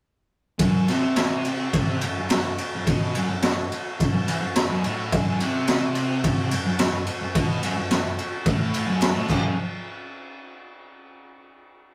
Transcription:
0.59 0.87 F#2 loud
0.59 5.09 F#4 medium
0.59 5.09 A4 medium
0.59 5.09 C#5 medium
0.59 kick loud
0.59 ride medium
0.88 2.02 C3 loud
0.88 snare soft
0.88 ride medium
1.16 snare loud
1.16 clap loud
1.16 ride medium
1.45 ride medium
1.73 kick loud
1.73 ride medium
2.01 2.17 F#2 medium
2.01 ride medium
2.18 2.30 F#2 medium
2.30 2.54 F#2 medium
2.30 snare loud
2.30 clap medium
2.30 ride loud
2.58 ride medium
2.76 2.89 F#2 medium
2.87 3.15 B2 loud
2.87 kick loud
2.87 ride medium
3.15 3.29 F#2 loud
3.15 ride medium
3.30 3.42 F#2 medium
3.42 3.66 F#2 medium
3.42 snare loud
3.42 clap medium
3.42 ride medium
3.72 ride medium
4.00 4.12 F#2 medium
4.00 kick loud
4.00 ride medium
4.13 4.28 F#2 medium
4.27 4.41 E3 loud
4.27 ride medium
4.41 4.64 F#2 medium
4.55 snare loud
4.55 clap medium
4.55 ride medium
4.70 4.84 F#2 medium
4.83 5.11 A2 loud
4.83 ride medium
5.12 5.40 F#2 loud
5.12 9.26 F#4 medium
5.12 9.27 A4 medium
5.12 9.27 C#5 medium
5.12 kick loud
5.12 ride medium
5.40 6.51 C3 loud
5.40 ride medium
5.67 snare loud
5.67 clap medium
5.67 ride medium
5.95 ride medium
6.24 kick loud
6.24 ride medium
6.51 6.64 F#2 medium
6.51 ride medium
6.66 6.79 F#2 medium
6.79 7.03 F#2 medium
6.79 snare loud
6.79 clap medium
6.79 ride loud
7.07 ride medium
7.22 7.36 F#2 medium
7.34 7.62 B2 loud
7.34 kick loud
7.34 ride loud
7.62 7.75 F#2 loud
7.62 clap medium
7.62 ride medium
7.77 7.90 F#2 medium
7.91 8.14 F#2 medium
7.91 snare medium
7.91 clap medium
7.91 ride medium
8.19 ride medium
8.46 8.88 A2 loud
8.46 kick loud
8.46 ride medium
8.74 ride medium
8.87 9.15 F#2 medium
9.02 snare loud
9.02 clap medium
9.02 ride medium
9.14 9.28 A2 medium
9.28 9.51 F#2 loud
9.28 9.52 C#3 loud
9.28 9.52 F#3 loud
9.28 kick loud
9.28 clap medium
9.28 crash medium
9.32 9.58 F#4 medium
9.32 9.57 A4 medium
9.32 9.57 C#5 medium

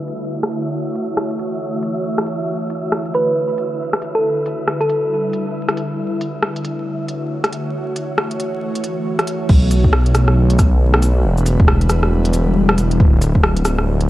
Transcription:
0.00 0.73 D3 medium
0.00 4.24 A3 medium
0.00 9.50 E4 medium
0.00 4.81 F#4 medium
0.00 3.20 C#5 medium
0.00 9.51 E5 medium
0.08 closed hi-hat soft
0.43 cross-stick loud
0.43 closed hi-hat soft
0.52 closed hi-hat medium
0.74 2.49 E3 medium
0.95 closed hi-hat soft
1.17 cross-stick loud
1.31 closed hi-hat soft
1.39 closed hi-hat soft
1.83 closed hi-hat soft
2.18 cross-stick medium
2.18 closed hi-hat soft
2.26 closed hi-hat soft
2.48 7.74 D3 medium
2.70 closed hi-hat soft
2.92 cross-stick medium
3.05 closed hi-hat soft
3.14 3.58 B4 medium
3.14 closed hi-hat soft
3.29 6.70 B4 medium
3.58 closed hi-hat soft
3.93 cross-stick medium
3.93 closed hi-hat soft
4.02 closed hi-hat soft
4.15 4.29 A4 medium
4.46 closed hi-hat soft
4.51 5.99 G3 medium
4.62 6.70 E4 medium
4.68 cross-stick medium
4.81 5.11 A4 medium
4.81 closed hi-hat soft
4.90 closed hi-hat soft
5.33 closed hi-hat soft
5.68 cross-stick medium
5.68 closed hi-hat soft
5.77 closed hi-hat soft
6.21 closed hi-hat soft
6.33 11.24 A3 medium
6.33 10.21 C#5 medium
6.39 11.95 F#4 medium
6.39 cross-stick medium
6.56 closed hi-hat soft
6.65 closed hi-hat soft
7.08 closed hi-hat soft
7.44 cross-stick medium
7.44 closed hi-hat soft
7.52 closed hi-hat soft
7.74 9.49 E3 medium
7.96 closed hi-hat medium
8.18 cross-stick medium
8.31 closed hi-hat soft
8.40 closed hi-hat medium
8.75 closed hi-hat soft
8.84 closed hi-hat medium
9.19 cross-stick medium
9.19 closed hi-hat soft
9.27 closed hi-hat medium
9.49 10.14 B1 loud
9.49 14.10 D3 medium
9.49 kick loud
9.49 crash loud
9.71 closed hi-hat medium
9.71 cabasa medium
9.84 kick medium
9.93 cross-stick loud
10.06 closed hi-hat soft
10.15 11.26 B1 loud
10.15 cross-stick medium
10.15 closed hi-hat medium
10.15 cabasa medium
10.28 13.70 B4 medium
10.28 cross-stick medium
10.50 closed hi-hat soft
10.59 kick loud
10.59 cross-stick medium
10.59 closed hi-hat medium
10.59 cabasa medium
10.94 cross-stick loud
11.02 closed hi-hat medium
11.02 cabasa medium
11.24 11.58 E1 loud
11.29 13.00 G3 medium
11.38 cabasa soft
11.46 closed hi-hat medium
11.46 cabasa medium
11.60 11.89 E1 loud
11.60 kick loud
11.68 cross-stick loud
11.72 13.71 E4 medium
11.81 closed hi-hat soft
11.90 13.01 E1 loud
11.90 cross-stick medium
11.90 closed hi-hat medium
11.90 cabasa medium
12.03 cross-stick medium
12.25 closed hi-hat soft
12.33 closed hi-hat medium
12.33 cabasa medium
12.69 cross-stick loud
12.78 closed hi-hat medium
12.78 cabasa medium
12.91 closed hi-hat soft
13.00 13.33 D1 loud
13.00 kick loud
13.04 14.10 A3 medium
13.15 14.10 F#4 medium
13.19 14.10 C#5 medium
13.19 closed hi-hat medium
13.19 cabasa medium
13.35 13.64 D1 loud
13.35 kick medium
13.44 cross-stick loud
13.57 closed hi-hat soft
13.65 14.10 D1 loud
13.65 cross-stick medium
13.65 closed hi-hat medium
13.65 cabasa medium
13.79 cross-stick medium
14.01 closed hi-hat soft

